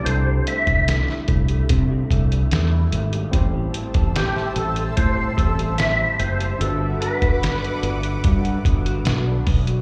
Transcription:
<<
  \new Staff \with { instrumentName = "Analog synth pad" } { \time 4/4 \key c \lydian \tempo 4 = 73 r1 | <c'' e'' a'' e'''>1 | <b' fis'' d'''>1 | }
  \new Staff \with { instrumentName = "Electric slide guitar" } { \time 4/4 \key c \lydian c''8 e''4 r2 r8 | r4 g'8 a'8 c''8 a'8 e''8 c''8 | a'8 b'4 r2 r8 | }
  \new Staff \with { instrumentName = "Tine electric piano" } { \time 4/4 \key c \lydian <d' e' g' a'>1 | <c' e' g' c''>1 | <d' fis' a' b'>1 | }
  \new Staff \with { instrumentName = "Clean electric guitar" } { \clef bass \time 4/4 \key c \lydian c16 g16 a16 g16 a16 e'16 a16 g16 c16 g16 a16 g16 a16 e'16 a16 g16 | a,16 g16 c'16 g16 c'16 e'16 c'16 g16 a,16 g16 c'16 g16 c'16 e'16 c'16 g16 | g,16 fis16 b16 fis16 b16 d'16 b16 fis16 g,16 fis16 b16 fis16 b16 d'16 b16 fis16 | }
  \new Staff \with { instrumentName = "Fingered electric bass" } { \clef bass \time 4/4 \key c \lydian c,8 r16 c,8 r16 c,8 c8 c,8 e,8 aes,,8 | a,,8 r16 a,,8 r16 a,,8 a,8 a,,4 fis,,8 | g,,8 r16 g,,8 r16 g,,8 g,8 g,,8 b,,8 b,,8 | }
  \new DrumStaff \with { instrumentName = "Drums" } \drummode { \time 4/4 hh8 hh16 <hh bd>16 <hh sn>16 sn16 <hh bd>16 hh16 <hh bd>8 <hh bd>16 hh16 <hh sn>8 hh16 hh16 | <hh bd>8 hh16 <hh bd>16 <hh sn>16 sn16 hh16 hh16 <hh bd>8 <hh bd>16 hh16 <hh sn>8 hh16 hh16 | hh8 hh16 <hh bd>16 <hh sn>16 hh16 hh16 hh16 <hh bd>16 hh16 <hh bd>16 hh16 <hh sn>8 <hho bd>16 hh16 | }
>>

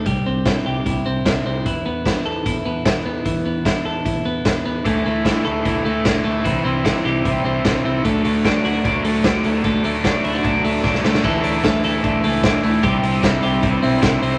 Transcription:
<<
  \new Staff \with { instrumentName = "Clean electric guitar" } { \time 4/4 \key d \lydian \tempo 4 = 150 g8 c'8 e'8 g'8 e'8 c'8 e'8 c'8 | e8 b8 e'8 a'8 e'8 b8 e'8 b8 | e8 b8 e'8 a'8 e'8 b8 e'8 b8 | a8 a8 e'8 a'8 e'8 a8 d'16 e'16 a8 |
e8 c'8 e'8 g'8 e'8 c'8 e'8 c'8 | a8 a8 d'8 fis'8 d'8 a8 d'8 a8 | a8 a8 d'8 e'16 fis'16 d'8 a8 d'8 a8 | <e a'>8 d'8 a8 a'8 d'8 a8 d'8 a8 |
<g g'>8 e'8 c'8 g'8 e'8 c'8 e'8 c'8 | }
  \new Staff \with { instrumentName = "Overdriven electric guitar" } { \time 4/4 \key d \lydian r1 | r1 | r1 | <d e a e'>8 <e a e'>8 <d e a e'>8 <e a e'>8 <d e a e'>8 <e a e'>8 <d e a e'>8 <e a e'>8 |
<c g c' e'>8 <g c' e'>8 <c g c' e'>8 <g c' e'>8 <c g c' e'>8 <g c' e'>8 <c g c' e'>8 <g c' e'>8 | <d fis a d'>8 <fis a d'>8 <d fis a d'>8 <fis a d'>8 <d fis a d'>8 <fis a d'>8 <d fis a d'>8 <fis a d'>8 | <d fis a d'>8 <fis a d'>8 <d fis a d'>8 <fis a d'>8 <d fis a d'>8 <fis a d'>8 <d fis a d'>8 <fis a d'>8 | <d e a e'>8 <e a e'>8 <d e a e'>8 <e a e'>8 <d e a e'>8 <e a e'>8 <d e a e'>8 <e a e'>8 |
<c g c' e'>8 <g c' e'>8 <c g c' e'>8 <g c' e'>8 <c g c' e'>8 <g c' e'>8 <c g c' e'>8 <g c' e'>8 | }
  \new Staff \with { instrumentName = "Fingered electric bass" } { \clef bass \time 4/4 \key d \lydian c,8 c,8. r16 c,8 c,8 c,8 c,8 c,8 | e,8 e,8. r16 e,8 e,8 e,8 e,8 e,8 | e,8 e,8. r16 e,8 e,8 e,8 e,8 e,8 | d,8 d,8. r16 d,8 d,8 d,8 d,8 d,8 |
c,8 c,8. r16 c,8 c,8 c,8 c,8 c,8 | d,8 d,8. r16 d,8 d,8 d,8 d,8 d,8 | d,8 d,8. r16 d,8 d,8 d,8 d,8 d,8 | d,8 d,8 d,8 d,8 d,8 cis,8 d,8 d,8 |
c,8 c,8 c,8 c,8 c,8 b,,8 c,8 c,8 | }
  \new DrumStaff \with { instrumentName = "Drums" } \drummode { \time 4/4 <hh bd>4 <hh bd sn>4 <hh bd>4 <hh bd sn>4 | <hh bd>4 <hh bd sn>4 <hh bd>4 <hh bd sn>4 | <hh bd>4 <hh bd sn>4 <hh bd>4 <hh bd sn>4 | <hh bd>4 <hh bd sn>4 <hh bd>4 <hh bd sn>4 |
<hh bd>4 <hh bd sn>4 <hh bd>4 <hh bd sn>4 | <hh bd>8 hho8 <hh bd sn>8 hho8 <hh bd>8 hho8 <hh bd sn>8 hho8 | <hh bd>8 hho8 <hh bd sn>8 hho8 <hh bd>8 hho8 <bd sn>16 sn16 sn16 sn16 | <cymc bd>8 hho8 <hh bd sn>8 hho8 <hh bd>8 hho8 <hh bd sn>8 hho8 |
<hh bd>8 hho8 <hh bd sn>8 hho8 <hh bd>8 hho8 <hh bd sn>8 hho8 | }
>>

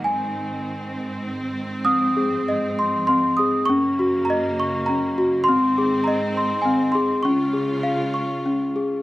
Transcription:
<<
  \new Staff \with { instrumentName = "Celesta" } { \time 3/4 \key aes \mixolydian \tempo 4 = 100 << { aes''2 r4 | ees'''2 c'''8 ees'''8 | des'''4 bes''4 bes''8. r16 | c'''4 bes''4 aes''8 c'''8 |
des'''2 r4 | } \\ { r2. | c'8 aes'8 ees''8 c'''8 c'8 aes'8 | des'8 ges'8 ees''8 des'''8 des'8 ges'8 | c'8 aes'8 ees''8 c'''8 c'8 aes'8 |
des'8 aes'8 f''8 des'''8 des'8 aes'8 | } >> }
  \new Staff \with { instrumentName = "String section" } { \clef bass \time 3/4 \key aes \mixolydian << { c'2.~ | c'2. | <des bes>2. | <ees c'>2. |
<aes f'>2. | } \\ { <aes, ees>2. | f2. | ges,2. | aes,2. |
des2. | } >> }
>>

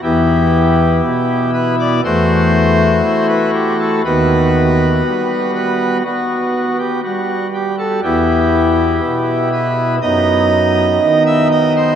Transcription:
<<
  \new Staff \with { instrumentName = "Pipe organ" } { \time 4/4 \key e \minor \tempo 4 = 60 << { g'4. b'16 d''16 c''4~ c''16 b'16 g'16 a'16 | b'4. b'8 fis'8. g'16 fis'8 g'16 a'16 | g'4. b'8 dis''4~ dis''16 e''16 dis''16 c''16 | } \\ { <b e'>2 <a fis'>2 | <b fis'>1 | <b e'>2 <b dis'>2 | } >> }
  \new Staff \with { instrumentName = "Pipe organ" } { \clef bass \time 4/4 \key e \minor <e, e>4 b,4 <e, e>4 e'4 | <dis, dis>4 g4 b4 g4 | <e, e>4 b,4 <fis, fis>4 dis4 | }
>>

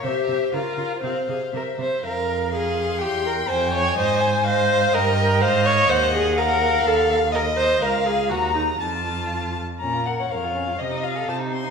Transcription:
<<
  \new Staff \with { instrumentName = "Violin" } { \time 2/4 \key f \minor \tempo 4 = 124 e''8 e''8 f''8 f''8 | f''8 f''8 e''8 e''8 | r4 c'''4~ | c'''4 aes''4~ |
aes''4 ees''4 | g''4 f''4 | \key bes \minor ees''4 ges''4 | f''4 ees''4 |
f''4 bes''4 | a''4. r8 | bes''8 ges''8 f''4 | ees''8 f''8 a''8 c'''8 | }
  \new Staff \with { instrumentName = "Violin" } { \time 2/4 \key f \minor c''4 bes'4 | c''4. r8 | f''4 f''4 | g''2 |
ees''8 aes''8 f''4 | ees''4 ees''4 | \key bes \minor ges''4 f''4~ | f''4 ees''4 |
f''4 bes''4 | a''4. r8 | des'16 f'16 bes'16 des''16 bes'16 f'16 des'16 f'16 | c'16 ees'16 f'16 a'16 f'16 ees'16 c'16 ees'16 | }
  \new Staff \with { instrumentName = "Viola" } { \time 2/4 \key f \minor g'4 f'4 | c'8 aes'8 bes'8 c''8 | bes'4 aes'4 | g'8 bes'8 c''8 des''8 |
c''4 c''4 | bes'8 bes'8 c''8 des''8 | \key bes \minor c''8 aes'8 bes'4 | a'8 a'8 bes'8 c''8 |
bes'8 aes'8 ges'8 ees'8 | f'4. r8 | bes'4 des''4 | ees''4 c''4 | }
  \new Staff \with { instrumentName = "Cello" } { \clef bass \time 2/4 \key f \minor c8 c8 des8 des8 | c8 c8 c8 c8 | f,2 | e,4 f,4 |
aes,2 | g,4 aes,4 | \key bes \minor ees,2 | ees,2 |
des,4 ees,4 | f,4. r8 | bes,4 f,4 | c4 c4 | }
>>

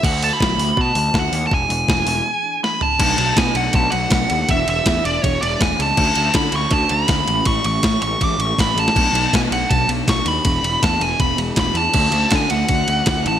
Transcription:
<<
  \new Staff \with { instrumentName = "Lead electric guitar" } { \time 4/4 \key d \lydian \tempo 4 = 161 fis''8 a''16 b''4~ b''16 a''4 fis''8. a''16 | gis''2. b''8 a''8~ | a''4 gis''8 fis''8 a''8 fis''4. | e''8 e''4 d''8 cis''8 d''8 gis''8 a''8~ |
a''4 b''8 cis'''8 a''8 b''4. | cis'''8 cis'''4 cis'''8 d'''8 cis'''8 b''8 a''8~ | a''4 gis''8 fis''8 a''8 r8 cis'''8 b''8~ | b''4 a''8 gis''8 b''8 r8 b''8 a''8~ |
a''4 gis''8 fis''2 a''8 | }
  \new Staff \with { instrumentName = "Clean electric guitar" } { \time 4/4 \key d \lydian d4 d8 a8 fis'8 cis'8 d8 a8 | e4 e8 b8 gis'8 d'8 e8 b8 | <b, fis a d' a'>8 <a d' a'>8 <fis a d'>4 <b, fis a d' a'>8 <d' a'>8 <fis a d' a'>8 <a d' a'>8 | <e b d' gis'>8 <b d' gis'>8 <d' gis'>4 <e b d' gis'>8 b8 <e b gis'>8 <b d' gis'>8 |
<d a cis' fis'>8 <a cis' fis'>8 <d a cis' fis'>4 <d a cis' fis'>8 <a fis'>8 <d cis' fis'>8 <a, e gis cis' e'>8 | <a, e gis cis' e'>8 <gis cis' e'>8 e'4 <a, e gis cis' e'>8 <gis cis' e'>8 <e gis e'>8 <gis cis' e'>8 | <b, fis a d' fis'>8 <a d' fis'>8 <fis a d' fis'>4 <b, fis a d' fis'>8 <a d' fis'>8 <fis a d' fis'>8 <a d' fis'>8 | <e b d' gis'>8 <b d' gis'>8 <e b d'>4 <e b d' gis'>8 <b d' gis'>8 <b d' gis'>8 <b d' gis'>8 |
<d a cis' fis'>8 <cis' fis'>8 <d a cis' fis'>4 <d a cis' fis'>8 <a cis' fis'>8 <d a cis' fis'>8 <a, e gis cis' e'>8 | }
  \new Staff \with { instrumentName = "Picked electric bass" } { \clef bass \time 4/4 \key d \lydian d,4 b,,8 d,8 b,8 d,8 d,8 dis,8 | e,,8 e,,8 e,,8 e,,8 r2 | b,,8 b,,8 b,8 b,,8 b,,8 b,,8 b,,8 dis,8 | e,,8 e,,8 e,8 e,,8 e,,8 e,,8 e,,8 cis,8 |
d,8 d,8 d8 d,8 d,8 d,8 d,8 a,,8 | a,,8 a,,8 a,8 a,,8 a,,8 a,,8 a,,8 a,,8 | b,,8 b,,8 b,8 b,,8 b,,8 b,,8 b,,8 dis,8 | e,,8 e,,8 e,8 e,,8 e,,8 e,,8 e,,8 e,8 |
d,8 d,8 d8 d,8 d,8 d,8 d,8 a,,8 | }
  \new DrumStaff \with { instrumentName = "Drums" } \drummode { \time 4/4 <cymc bd>8 hho8 <bd sn>8 hho8 bd8 hho8 <bd sn>8 hho8 | bd8 hho8 <bd sn>8 hho8 r4 sn8 tomfh8 | <cymc bd cymr>8 cymr8 <bd cymr sn>8 cymr8 <bd cymr>8 cymr8 <bd cymr sn>8 cymr8 | <bd cymr>8 cymr8 <bd cymr sn>8 cymr8 <bd cymr>8 cymr8 <bd cymr sn>8 cymr8 |
<cymc bd>8 cymr8 <bd cymr sn>8 cymr8 <bd cymr>8 cymr8 <bd cymr sn>8 cymr8 | <bd cymr>8 cymr8 <bd cymr sn>8 cymr8 <bd cymr>8 cymr8 <bd cymr sn>8 cymr16 sn16 | <cymc bd>8 cymr8 <bd cymr sn>8 cymr8 <bd cymr>8 cymr8 <bd cymr sn>8 cymr8 | <bd cymr>8 cymr8 <bd cymr sn>8 cymr8 <bd cymr>8 cymr8 <bd cymr sn>8 cymr8 |
<cymc bd>8 cymr8 <bd cymr sn>8 cymr8 <bd cymr>8 cymr8 <bd cymr sn>8 cymr8 | }
>>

